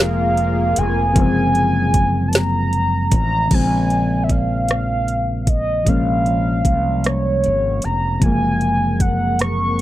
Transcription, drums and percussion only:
0.00 snare loud
0.37 closed hi-hat soft
0.76 closed hi-hat medium
1.16 kick loud
1.16 closed hi-hat medium
1.55 closed hi-hat medium
1.94 kick medium
1.94 closed hi-hat medium
2.33 snare loud
2.33 closed hi-hat medium
2.73 closed hi-hat medium
3.11 kick medium
3.11 closed hi-hat medium
3.51 kick loud
3.51 closed hi-hat medium
3.51 crash medium
3.90 closed hi-hat soft
4.29 kick medium
4.29 closed hi-hat medium
4.68 cross-stick loud
4.68 closed hi-hat medium
5.08 closed hi-hat soft
5.47 kick medium
5.47 closed hi-hat medium
5.86 kick loud
5.86 closed hi-hat medium
6.26 closed hi-hat soft
6.65 kick medium
6.65 closed hi-hat medium
7.04 cross-stick loud
7.04 closed hi-hat medium
7.44 closed hi-hat soft
7.82 closed hi-hat medium
8.22 kick loud
8.22 closed hi-hat medium
8.61 closed hi-hat soft
9.00 kick medium
9.00 closed hi-hat medium
9.39 cross-stick medium
9.39 closed hi-hat medium

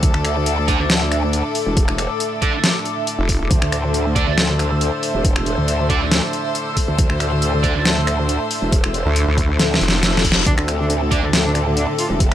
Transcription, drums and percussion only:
0.03 kick loud
0.03 closed hi-hat medium
0.14 finger snap medium
0.25 finger snap medium
0.25 closed hi-hat medium
0.46 closed hi-hat medium
0.68 kick medium
0.68 closed hi-hat medium
0.90 snare loud
0.90 closed hi-hat medium
1.12 finger snap medium
1.12 closed hi-hat medium
1.33 closed hi-hat medium
1.55 open hi-hat medium
1.77 kick loud
1.77 closed hi-hat medium
1.88 finger snap medium
1.98 finger snap medium
1.98 closed hi-hat medium
2.20 closed hi-hat medium
2.42 kick medium
2.42 closed hi-hat medium
2.64 snare loud
2.64 closed hi-hat medium
2.85 closed hi-hat medium
3.07 closed hi-hat medium
3.29 kick medium
3.29 open hi-hat medium
3.51 kick loud
3.51 closed hi-hat medium
3.62 finger snap medium
3.72 finger snap medium
3.72 closed hi-hat medium
3.94 closed hi-hat medium
4.16 kick medium
4.16 closed hi-hat medium
4.38 snare loud
4.38 closed hi-hat medium
4.59 finger snap medium
4.59 closed hi-hat medium
4.81 closed hi-hat medium
5.03 open hi-hat medium
5.25 kick loud
5.25 closed hi-hat medium
5.36 finger snap medium
5.46 closed hi-hat medium
5.68 closed hi-hat medium
5.90 kick medium
5.90 closed hi-hat medium
6.12 snare loud
6.12 closed hi-hat medium
6.33 closed hi-hat medium
6.55 closed hi-hat medium
6.77 kick medium
6.77 open hi-hat medium
6.98 kick loud
6.98 closed hi-hat medium
7.10 finger snap medium
7.20 finger snap medium
7.20 closed hi-hat medium
7.42 closed hi-hat medium
7.64 kick medium
7.64 closed hi-hat medium
7.85 snare loud
7.85 closed hi-hat medium
8.07 finger snap medium
8.07 closed hi-hat medium
8.29 closed hi-hat medium
8.51 open hi-hat loud
8.72 kick loud
8.72 closed hi-hat medium
8.84 finger snap medium
8.94 closed hi-hat medium
9.16 closed hi-hat medium
9.38 kick medium
9.38 closed hi-hat medium
9.59 snare medium
9.59 closed hi-hat medium
9.74 snare medium
9.81 closed hi-hat medium
9.88 snare medium
10.03 snare medium
10.03 closed hi-hat medium
10.17 snare loud
10.25 kick medium
10.25 open hi-hat loud
10.32 snare loud
10.46 kick loud
10.46 closed hi-hat medium
10.58 finger snap medium
10.68 finger snap medium
10.68 closed hi-hat medium
10.90 closed hi-hat medium
11.12 kick medium
11.12 closed hi-hat medium
11.33 snare loud
11.33 closed hi-hat medium
11.55 finger snap medium
11.55 closed hi-hat medium
11.77 closed hi-hat medium
11.98 open hi-hat loud
12.20 kick loud
12.20 closed hi-hat medium

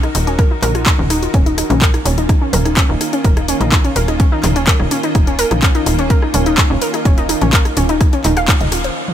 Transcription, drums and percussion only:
0.03 cross-stick medium
0.03 closed hi-hat soft
0.15 open hi-hat loud
0.27 closed hi-hat soft
0.39 kick loud
0.39 cross-stick medium
0.39 closed hi-hat soft
0.63 clap soft
0.63 mid tom medium
0.63 open hi-hat loud
0.75 cross-stick medium
0.75 closed hi-hat soft
0.86 kick loud
0.86 clap loud
0.86 closed hi-hat soft
0.99 mid tom medium
1.10 cross-stick medium
1.10 open hi-hat loud
1.23 closed hi-hat soft
1.34 kick loud
1.34 closed hi-hat soft
1.46 closed hi-hat soft
1.58 cross-stick medium
1.58 open hi-hat loud
1.70 closed hi-hat soft
1.70 mid tom medium
1.82 kick loud
1.82 clap loud
1.82 closed hi-hat soft
1.94 cross-stick medium
1.94 closed hi-hat soft
2.06 open hi-hat medium
2.18 closed hi-hat soft
2.29 kick loud
2.29 cross-stick medium
2.29 closed hi-hat soft
2.53 mid tom medium
2.53 open hi-hat loud
2.65 cross-stick medium
2.65 closed hi-hat soft
2.77 kick loud
2.77 clap loud
2.77 closed hi-hat soft
3.01 cross-stick medium
3.01 open hi-hat loud
3.13 closed hi-hat soft
3.25 kick loud
3.25 closed hi-hat soft
3.37 cross-stick medium
3.37 closed hi-hat soft
3.48 open hi-hat loud
3.61 closed hi-hat soft
3.61 mid tom medium
3.72 kick loud
3.72 cross-stick medium
3.72 clap loud
3.72 closed hi-hat soft
3.84 closed hi-hat soft
3.96 open hi-hat loud
4.08 cross-stick soft
4.08 closed hi-hat soft
4.20 kick loud
4.20 closed hi-hat soft
4.44 cross-stick medium
4.44 clap soft
4.44 mid tom medium
4.44 open hi-hat medium
4.56 closed hi-hat soft
4.67 kick loud
4.67 clap loud
4.67 closed hi-hat soft
4.80 cross-stick soft
4.80 mid tom medium
4.91 open hi-hat loud
5.03 closed hi-hat soft
5.15 kick loud
5.15 cross-stick soft
5.15 closed hi-hat soft
5.27 closed hi-hat soft
5.39 open hi-hat loud
5.51 cross-stick medium
5.51 closed hi-hat soft
5.51 mid tom medium
5.62 kick loud
5.62 clap loud
5.62 closed hi-hat soft
5.75 closed hi-hat soft
5.86 cross-stick soft
5.86 open hi-hat loud
5.99 closed hi-hat soft
6.10 kick loud
6.10 closed hi-hat soft
6.22 cross-stick soft
6.34 mid tom medium
6.34 open hi-hat loud
6.46 closed hi-hat soft
6.58 kick loud
6.58 cross-stick soft
6.58 clap loud
6.58 closed hi-hat soft
6.82 open hi-hat medium
6.94 cross-stick medium
6.94 closed hi-hat soft
7.05 kick loud
7.05 closed hi-hat soft
7.18 closed hi-hat soft
7.29 cross-stick medium
7.29 open hi-hat loud
7.41 closed hi-hat soft
7.41 mid tom medium
7.53 kick loud
7.53 clap loud
7.53 closed hi-hat soft
7.65 cross-stick soft
7.65 closed hi-hat soft
7.77 open hi-hat loud
7.89 closed hi-hat soft
8.01 kick loud
8.01 cross-stick medium
8.01 closed hi-hat soft
8.13 closed hi-hat soft
8.24 clap soft
8.24 mid tom medium
8.24 open hi-hat medium
8.37 cross-stick soft
8.37 closed hi-hat soft
8.48 kick loud
8.48 clap loud
8.48 closed hi-hat soft
8.61 closed hi-hat soft
8.61 mid tom medium
8.72 cross-stick soft
8.72 open hi-hat medium
8.84 closed hi-hat soft
9.08 mid tom medium

